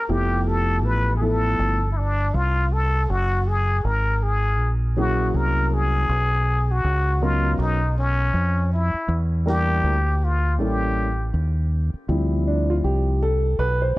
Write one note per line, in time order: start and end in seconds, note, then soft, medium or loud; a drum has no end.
0.00 0.12 A#4 medium
0.09 0.84 F1 medium
0.09 1.16 F3 medium
0.09 1.16 A3 medium
0.09 1.16 B3 medium
0.09 1.16 E4 medium
0.09 1.16 G4 medium
0.09 0.49 G4 medium
0.48 0.87 A4 medium
0.84 1.55 A1 medium
0.84 1.16 B4 medium
1.17 1.24 G#4 medium
1.21 1.77 F3 medium
1.21 1.77 A3 medium
1.21 1.77 B3 medium
1.21 1.77 E4 medium
1.21 1.78 A4 medium
1.21 1.92 A4 loud
1.59 2.30 G1 medium
1.92 1.99 E4 medium
1.97 2.36 D4 medium
2.34 3.05 C2 medium
2.34 2.74 F4 medium
2.73 3.11 A4 medium
3.10 3.81 F#1 loud
3.10 3.49 F#4 loud
3.48 3.86 G#4 medium
3.84 4.59 G#1 medium
3.84 4.24 A#4 medium
4.23 4.72 G#4 medium
4.59 5.30 A#1 medium
4.96 6.03 F#3 medium
4.96 6.03 A#3 medium
4.96 6.03 C#4 medium
4.96 6.04 E4 medium
4.96 5.37 F#4 medium
4.96 6.04 G#4 medium
5.34 6.05 C2 medium
5.34 5.75 A#4 medium
5.74 6.73 G#4 medium
6.09 6.80 B1 loud
6.71 7.25 F#4 medium
6.84 7.56 C#2 medium
7.21 7.77 F#3 medium
7.21 7.77 B3 medium
7.21 7.78 C#4 medium
7.21 7.78 D#4 medium
7.21 7.60 F4 medium
7.21 7.78 A#4 medium
7.59 8.30 B1 medium
7.59 7.95 D#4 medium
7.98 8.69 C#4 medium
8.34 8.91 F2 medium
8.73 9.19 E4 medium
8.94 muted fingered electric bass stroke soft
9.09 9.80 E2 loud
9.46 9.93 G3 medium
9.46 9.93 A#3 medium
9.46 9.93 D4 medium
9.46 9.93 E4 medium
9.46 10.26 G4 loud
9.46 9.94 A#4 medium
9.84 10.59 D2 medium
10.24 10.60 F4 medium
10.59 11.30 A1 medium
10.59 11.06 G3 medium
10.59 11.06 A#3 medium
10.59 11.06 C#4 medium
10.59 11.06 E4 medium
10.59 11.32 G4 medium
10.59 11.06 A4 medium
11.34 11.91 D#2 medium
11.94 muted fingered electric bass stroke soft
12.09 12.80 D2 loud
12.09 13.17 F3 medium
12.09 13.18 G3 soft
12.09 13.18 C4 medium
12.09 13.18 E4 medium
12.47 12.70 D4 medium
12.70 12.75 F4 medium
12.84 13.55 C2 medium
12.84 13.23 G4 medium
13.23 13.61 A4 medium
13.59 13.95 B1 medium
13.59 13.80 B4 loud
13.82 13.97 C5 medium